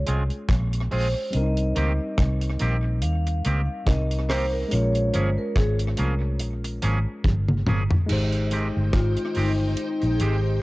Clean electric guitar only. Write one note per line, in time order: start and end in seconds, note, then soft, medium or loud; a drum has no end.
0.07 0.22 G#3 medium
0.07 0.22 C4 medium
0.07 0.22 F4 medium
0.07 0.23 G#4 medium
0.91 1.06 G#3 medium
0.91 1.07 C4 medium
0.91 1.07 F4 loud
0.91 1.07 G#4 medium
1.76 1.91 D#3 medium
1.76 1.91 A#3 loud
1.76 1.91 C4 medium
1.76 1.92 G4 loud
2.60 2.75 D#3 medium
2.60 2.75 A#3 medium
2.60 2.76 C4 medium
2.60 2.76 G4 medium
2.84 muted clean electric guitar stroke medium
3.27 muted clean electric guitar stroke soft
3.45 3.60 D#3 medium
3.45 3.60 A#3 medium
3.45 3.61 C4 medium
3.45 3.61 G4 medium
4.29 4.44 D#3 medium
4.29 4.44 A#3 loud
4.29 4.45 C4 medium
4.29 4.45 G4 medium
5.14 5.29 F3 medium
5.14 5.29 A#3 medium
5.14 5.29 C#4 medium
5.14 5.30 G#4 medium
5.98 6.13 F3 medium
5.98 6.13 A#3 medium
5.98 6.14 C#4 loud
5.98 6.14 G#4 medium
6.22 muted clean electric guitar stroke soft
6.64 muted clean electric guitar stroke soft
6.82 6.97 F3 medium
6.82 6.98 A#3 medium
6.82 6.98 C#4 medium
6.82 6.98 G#4 loud
7.67 7.82 F3 medium
7.67 7.82 A#3 medium
7.67 7.83 C#4 medium
7.67 7.83 G#4 medium
8.51 8.66 D#3 medium
8.51 8.67 G#3 medium
8.51 8.67 C4 medium
8.51 8.67 G4 medium
9.36 9.51 D#3 medium
9.36 9.51 G#3 medium
9.36 9.51 C4 medium
9.36 9.52 G4 medium
9.60 muted clean electric guitar stroke soft
10.02 muted clean electric guitar stroke soft
10.20 10.35 D#3 medium
10.20 10.36 G#3 medium
10.20 10.36 C4 medium
10.20 10.36 G4 medium